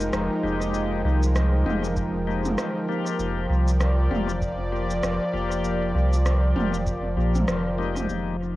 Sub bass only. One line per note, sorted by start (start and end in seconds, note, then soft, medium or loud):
0.00 0.11 F1 loud
0.13 0.29 F1 loud
0.43 1.02 F1 loud
1.05 1.63 C2 loud
1.66 2.55 F1 loud
3.19 3.47 F1 loud
3.50 4.08 C2 loud
4.11 5.00 F1 loud
5.03 5.19 F1 loud
5.33 5.92 F1 medium
5.95 6.53 C2 loud
6.56 7.17 F1 loud
7.17 7.45 A#1 loud
7.48 8.06 F1 medium
8.09 8.56 F1 medium